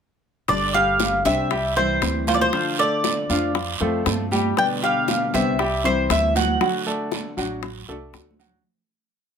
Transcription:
0.48 upright bass G1, nylon-string guitar D3 G3 D4 G4, grand piano D4 D5, cuban tres D5, high bongo, high conga, long guiro
0.74 grand piano G3 G4 G5, cuban tres F5, high bongo, high conga
1.00 high bongo, high conga, short guiro
1.25 upright bass C2, nylon-string guitar G3 D4 G4, grand piano C4 C5 E5, cuban tres E5, high bongo, short guiro
1.50 grand piano G3 G4 G5, muted nylon-string guitar stroke, high bongo, high conga, long guiro
1.76 nylon-string guitar E3 G3 C4 E4, grand piano C4 C5 E5, cuban tres C5, high bongo, high conga
2.01 upright bass D2, nylon-string guitar E3 G3 C4 E4, high bongo, low bongo, high conga, short guiro
2.27 grand piano F3 F4 F5, cuban tres C5, high conga, short guiro
2.34 cuban tres D5
2.41 cuban tres C5
2.53 nylon-string guitar D3 A3 D4 F4, grand piano F3 F4 F5, high bongo, long guiro
2.79 grand piano A3 A4 D5, cuban tres D5, high bongo, high conga
3.04 high bongo, high conga, short guiro
3.29 upright bass F2, grand piano F3 F4 F5, nylon-string guitar A3 D4 F4, high bongo, short guiro
3.54 muted nylon-string guitar stroke, high bongo, high conga, long guiro
3.80 upright bass F2, nylon-string guitar F3 A3 C4 F4, grand piano A3 A4 C5, high bongo, high conga
4.05 upright bass G2, nylon-string guitar F3 A3 C4 F4, high bongo, low bongo, high conga, short guiro
4.31 grand piano G3 G4 G5, high conga, short guiro
4.56 nylon-string guitar B2 D3 G3 B3 G4, grand piano B3 B4 D5, cuban tres G5, high bongo, long guiro
4.82 grand piano G3 G4 G5, cuban tres F5, high bongo, high conga
5.08 high bongo, high conga, short guiro
5.33 upright bass C2, nylon-string guitar D3 G3 B3 G4, grand piano C4 C5 E5, cuban tres E5, high bongo, short guiro
5.59 grand piano G3 G4 G5, muted nylon-string guitar stroke, high bongo, high conga, long guiro
5.84 nylon-string guitar E3 G3 C4 E4, grand piano C4 C5 E5, cuban tres C5, high bongo, high conga
6.10 upright bass D2, nylon-string guitar E3 G3 C4 E4, cuban tres E5, high bongo, low bongo, high conga, short guiro
6.35 grand piano F#3 F#4 F#5, cuban tres F#5, high conga, short guiro
6.60 nylon-string guitar D3 A3 D4 F#4, grand piano F#3 F#4 F#5, high bongo, high conga, long guiro
6.86 grand piano A3 A4 D5, high bongo, high conga
7.12 high bongo, high conga, short guiro
7.37 upright bass A1, grand piano F#3 F#4 F#5, nylon-string guitar A3 D4 F#4, high bongo, short guiro
7.63 muted nylon-string guitar stroke, high bongo, high conga, long guiro
7.88 upright bass C2, grand piano A3 A4 D5, nylon-string guitar A3 D4 F#4, high bongo, high conga
8.14 upright bass D2, nylon-string guitar D3 A3 D4 F#4, high bongo, low bongo, high conga, short guiro
8.30 high conga
8.39 grand piano F#3 F#4 F#5, short guiro
8.48 low conga

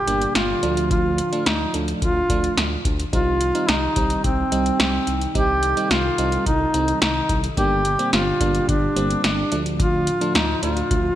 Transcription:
Already playing: analog synth pad A#2 D3 G3 D4 G4, duduk G4
0.07 analog synth bass G1, fm electric piano G3 A#3 D4, closed hi-hat
0.22 closed hi-hat
0.35 analog synth bass G1, duduk F4, snare, closed hi-hat
0.63 analog synth bass D2, analog synth pad A2 F3 F4, fm electric piano F3 A3 D4, closed hi-hat
0.77 closed hi-hat
0.91 duduk F4, kick, closed hi-hat
1.18 closed hi-hat
1.32 fm electric piano F3 A3 D4, closed hi-hat
1.46 analog synth bass D2, duduk D#4, snare, closed hi-hat
1.74 analog synth bass D2, fm electric piano F3 A3 D4, closed hi-hat
1.88 closed hi-hat
2.02 analog synth bass D2, duduk F4, kick, closed hi-hat
2.30 analog synth bass D2, fm electric piano F3 A3 D4, kick, closed hi-hat
2.44 closed hi-hat
2.57 analog synth bass D2, snare, closed hi-hat
2.85 analog synth bass D2, kick, closed hi-hat
3.00 closed hi-hat
3.13 analog synth bass C2, analog synth pad C3 D#3 G3 D#4 G4, fm electric piano G3 C4 D#4, duduk F4, kick, closed hi-hat
3.41 closed hi-hat
3.55 fm electric piano G3 C4 D#4, closed hi-hat
3.68 analog synth bass C2, duduk D#4, snare, closed hi-hat
3.96 analog synth bass C2, fm electric piano G3 C4 D#4, kick, closed hi-hat
4.10 closed hi-hat
4.24 analog synth bass C2, duduk C4, kick, closed hi-hat
4.52 analog synth bass C2, fm electric piano G3 C4 D#4, closed hi-hat
4.66 closed hi-hat
4.80 analog synth bass C2, duduk C4, snare, closed hi-hat
5.07 analog synth bass C2, closed hi-hat
5.21 closed hi-hat
5.35 analog synth bass C2, fm electric piano G3 C4 D#4, duduk G4, analog synth pad A4, kick, closed hi-hat
5.63 closed hi-hat
5.77 fm electric piano G3 C4 D#4, closed hi-hat
5.91 analog synth bass C2, duduk F4, snare, closed hi-hat
6.18 analog synth bass C2, fm electric piano G3 C4 D#4, closed hi-hat
6.32 closed hi-hat
6.46 analog synth bass C2, duduk D#4, kick, closed hi-hat
6.74 analog synth bass C2, fm electric piano G3 C4 D#4, closed hi-hat
6.88 closed hi-hat
7.02 analog synth bass C2, duduk D#4, snare, closed hi-hat
7.29 analog synth bass C2, kick, closed hi-hat
7.44 closed hi-hat
7.57 analog synth bass G1, analog synth pad A#2 D3 G3 D4 G4, fm electric piano G3 A#3 D4, duduk G4, kick, closed hi-hat
7.85 closed hi-hat
7.99 fm electric piano G3 A#3 C4, closed hi-hat
8.13 analog synth bass G1, duduk F4, snare, closed hi-hat
8.41 analog synth bass G1, fm electric piano G3 A#3 D4, kick, closed hi-hat
8.55 closed hi-hat
8.68 analog synth bass G1, duduk D4, kick, closed hi-hat
8.96 analog synth bass G1, fm electric piano G3 A#3 C4, closed hi-hat
9.11 closed hi-hat
9.24 analog synth bass G1, duduk D4, snare, closed hi-hat
9.52 analog synth bass D2, analog synth pad A2 D3 F3 F4, fm electric piano F3 A3 D4, closed hi-hat
9.66 closed hi-hat
9.80 duduk F4, kick, closed hi-hat
10.07 closed hi-hat
10.21 fm electric piano F3 A3 D4, closed hi-hat
10.35 analog synth bass D2, duduk D#4, snare, closed hi-hat
10.63 analog synth bass D2, fm electric piano F3 A3 D4, duduk F4, closed hi-hat
10.77 closed hi-hat
10.91 analog synth bass D2, kick, closed hi-hat

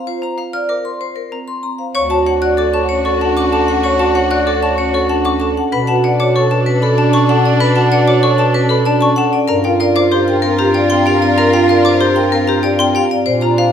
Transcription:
Already playing: marimba C5, vibraphone F5
0.07 marimba F4, vibraphone C5
0.22 marimba C5, xylophone A#5, vibraphone A#5
0.38 xylophone F5, vibraphone F5
0.53 vibraphone D5, marimba D5, xylophone F6
0.69 vibraphone A#4, marimba C5, xylophone D6
0.85 vibraphone C6
1.01 vibraphone C5
1.16 vibraphone A#4
1.32 marimba C4, xylophone A#5
1.48 vibraphone C6
1.63 marimba C4, vibraphone A#5
1.79 marimba C5, vibraphone F5
1.94 bass clarinet D2, string section D4 F#4, soprano saxophone F#4, marimba C#5, vibraphone C#5, xylophone C#6
2.10 marimba F#4, vibraphone A5, xylophone A5
2.26 marimba C#5, vibraphone F#5, xylophone F#5
2.41 marimba F#4, vibraphone D5, xylophone F#6
2.57 vibraphone A4, marimba D5, xylophone D6
2.73 marimba C#5, xylophone A5, vibraphone C#6
2.89 marimba C#4, vibraphone C#5
3.05 marimba A4, vibraphone A4, xylophone C#6
3.21 marimba D4, vibraphone F#5, xylophone A5
3.36 marimba C#4, vibraphone C#6, xylophone D6
3.52 marimba A4, xylophone A5, vibraphone A5
3.68 marimba C#4, vibraphone F#5
3.84 marimba C#5, vibraphone C#5, xylophone C#6
3.99 marimba F#4, xylophone A5, vibraphone A5
4.15 marimba C#5, vibraphone F#5, xylophone F#5
4.31 marimba F#4, vibraphone D5, xylophone F#6
4.47 vibraphone A4, marimba D5, xylophone D6
4.62 marimba C#5, xylophone A5, vibraphone C#6
4.78 marimba C#4, vibraphone C#5
4.93 marimba A4, vibraphone A4, xylophone C#6
5.09 marimba D4, vibraphone F#5, xylophone A5
5.25 marimba C#4, vibraphone C#6, xylophone D6
5.40 marimba A4, vibraphone A5, xylophone A5
5.57 marimba C#4, vibraphone F#5
5.71 bass clarinet B2, string section D4 A4, soprano saxophone D4, vibraphone B4, marimba B4, xylophone B5
5.87 marimba F#4, vibraphone F#5, xylophone A5
6.04 marimba B4, vibraphone D5, xylophone F#5
6.20 marimba F#4, vibraphone C#5, xylophone D6
6.35 vibraphone A4, marimba C#5, xylophone C#6
6.51 marimba B4, vibraphone A5, xylophone A5
6.66 marimba C#4, vibraphone B4
6.82 marimba A4, vibraphone A4, xylophone B5
6.98 marimba D4, vibraphone D5, xylophone A5
7.13 marimba C#4, vibraphone A5, xylophone C#6
7.29 marimba A4, vibraphone F#5, xylophone A5
7.45 marimba C#4, vibraphone D5
7.60 marimba B4, vibraphone B4, xylophone B5
7.76 marimba F#4, vibraphone F#5, xylophone A5
7.92 marimba B4, vibraphone D5, xylophone F#5
8.07 marimba F#4, vibraphone C#5, xylophone D6
8.23 vibraphone A4, marimba C#5, xylophone C#6
8.38 marimba B4, vibraphone A5, xylophone A5
8.54 marimba C#4, vibraphone B4
8.69 vibraphone A4, marimba A4, xylophone B5
8.85 marimba D4, vibraphone D5, xylophone A5
9.01 marimba C#4, vibraphone A5, xylophone C#6
9.16 marimba A4, vibraphone F#5, xylophone A5
9.33 marimba C#4, vibraphone D5
9.47 bass clarinet G2, string section F4 A#4, soprano saxophone F4, vibraphone A#4, marimba A#4, xylophone A#5
9.64 marimba F4, vibraphone F5, xylophone G5
9.80 marimba A#4, vibraphone D5, xylophone F5
9.96 marimba F4, vibraphone C5, xylophone D6
10.12 vibraphone G4, marimba C5, xylophone C6
10.28 marimba A#4, vibraphone G5
10.42 marimba C4, vibraphone A#4
10.58 vibraphone G4, marimba G4, xylophone A#5
10.74 vibraphone D5, xylophone G5
10.90 marimba C4, vibraphone G5, xylophone C6
11.06 marimba G4, vibraphone F5, xylophone G5
11.22 marimba C4, vibraphone D5
11.38 marimba A#4, vibraphone A#4, xylophone A#5
11.53 marimba F4, vibraphone F5, xylophone G5
11.69 marimba A#4, vibraphone D5, xylophone F5
11.85 marimba F4, vibraphone C5, xylophone D6
12.01 vibraphone G4, marimba C5, xylophone C6
12.16 marimba A#4, vibraphone G5
12.32 marimba C4, vibraphone A#4
12.47 marimba G4, vibraphone G4, xylophone A#5
12.63 vibraphone D5, xylophone G5
12.79 marimba C4, vibraphone G5, xylophone C6
12.95 marimba G4, vibraphone F5, xylophone G5
13.10 marimba C4, vibraphone D5
13.26 bass clarinet A#2, soprano saxophone D4, string section F4 D5, vibraphone C5, marimba C5
13.41 marimba F4, vibraphone A#5, xylophone A#5
13.57 marimba C5, xylophone F5, vibraphone F5

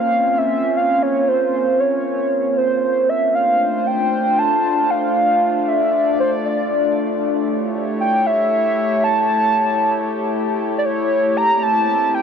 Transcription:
Already playing: ambient pad A#3 C4 C#4 F4
0.00 soft synth lead F5
0.38 soft synth lead E5
0.77 soft synth lead F5
1.02 soft synth lead C#5
1.28 soft synth lead C5
1.80 soft synth lead C#5
2.58 soft synth lead C5
3.09 ambient pad A3 D4 F4 C5, soft synth lead E5
3.35 soft synth lead F5
3.87 soft synth lead G5
4.39 soft synth lead A5
4.90 soft synth lead F5
5.16 ambient pad D5
5.68 soft synth lead E5
6.20 soft synth lead C5
6.45 soft synth lead D5
7.23 ambient pad E4 G4 C#5
8.01 soft synth lead G5
8.26 soft synth lead E5
9.04 soft synth lead A5
10.78 soft synth lead D5
10.85 soft synth lead C#5
11.37 ambient pad A#3 C4, soft synth lead A#5
11.63 soft synth lead A5
12.14 soft synth lead G5

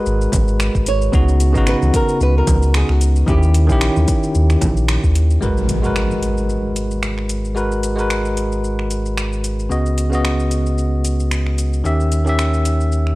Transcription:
Already playing: tine electric piano G#3 F#4 A#4 B4, nylon-string guitar D#5
0.06 sub bass G#1, shaker
0.21 shaker
0.32 sub bass G#1, kick, closed hi-hat, high conga, low conga, shaker
0.48 shaker
0.60 finger snap, shaker
0.75 sub bass G#1, kick, shaker
0.86 nylon-string guitar C#5, closed hi-hat, shaker
1.02 shaker
1.12 sub bass C#2, tine electric piano C#3 B3 D#4 F#4, kick, shaker
1.28 shaker
1.40 closed hi-hat, shaker
1.52 sub bass G#1, tine electric piano C#3 B3 D#4, kick, shaker
1.57 tine electric piano F#4
1.67 nylon-string guitar B4, finger snap, shaker
1.82 sub bass C#2, high conga, shaker
1.94 nylon-string guitar A#4, kick, closed hi-hat, shaker
2.09 shaker
2.21 sub bass C#2, nylon-string guitar B4, shaker
2.38 nylon-string guitar A#4
2.47 sub bass C#2, kick, closed hi-hat, high conga, low conga, shaker
2.62 shaker
2.74 nylon-string guitar G#4, finger snap, shaker
2.89 sub bass C#2, nylon-string guitar F#4, finger snap
3.01 closed hi-hat, shaker
3.16 shaker
3.26 sub bass D#2, tine electric piano D#3 C#4 E4 G4, nylon-string guitar G4, kick, shaker
3.43 shaker
3.54 closed hi-hat, shaker
3.67 sub bass A#1, tine electric piano D#3 C#4 E4, kick, shaker
3.72 tine electric piano G4
3.81 finger snap, shaker
3.96 sub bass D#2, high conga, shaker
4.08 kick, closed hi-hat, shaker
4.23 shaker
4.35 sub bass D#2, shaker
4.50 finger snap, shaker
4.61 sub bass A#1, kick, closed hi-hat, high conga, low conga, shaker
4.77 shaker
4.88 finger snap, shaker
5.04 sub bass D#2, kick, shaker
5.15 closed hi-hat, shaker
5.30 shaker
5.41 sub bass G#1, tine electric piano G#3 F#4 A#4 B4, impact, shaker
5.57 shaker
5.69 closed hi-hat, shaker
5.82 tine electric piano G#3 F#4 A#4, shaker
5.87 tine electric piano B4
5.96 finger snap, shaker
6.11 shaker
6.23 closed hi-hat, shaker
6.38 shaker
6.49 shaker
6.76 closed hi-hat, shaker
6.91 shaker
7.03 finger snap, shaker
7.18 finger snap
7.29 closed hi-hat, shaker
7.45 shaker
7.55 tine electric piano G#3 F#4 A#4 B4, shaker
7.72 shaker
7.83 closed hi-hat, shaker
7.96 tine electric piano G#3 F#4 A#4, shaker
8.00 tine electric piano B4
8.10 finger snap, shaker
8.25 shaker
8.37 closed hi-hat, shaker
8.52 shaker
8.64 shaker
8.79 finger snap
8.91 closed hi-hat, shaker
9.06 shaker
9.17 finger snap, shaker
9.33 shaker
9.44 closed hi-hat, shaker
9.59 shaker
9.69 sub bass C#2, tine electric piano C#3 B3 F#4 D#5, shaker
9.86 shaker
9.98 closed hi-hat, shaker
10.10 tine electric piano C#3 B3 F#4, shaker
10.15 tine electric piano D#5
10.25 finger snap, shaker
10.40 shaker
10.51 closed hi-hat, shaker
10.66 shaker
10.78 shaker
11.05 closed hi-hat, shaker
11.20 shaker
11.31 finger snap, shaker
11.47 finger snap
11.58 closed hi-hat, shaker
11.73 shaker
11.84 sub bass D#2, tine electric piano D#3 C#4 G4 E5, shaker
12.00 shaker
12.12 closed hi-hat, shaker
12.24 tine electric piano D#3 C#4 G4, shaker
12.29 tine electric piano E5
12.39 finger snap, shaker
12.54 shaker
12.65 closed hi-hat, shaker
12.80 shaker
12.92 shaker
13.07 finger snap

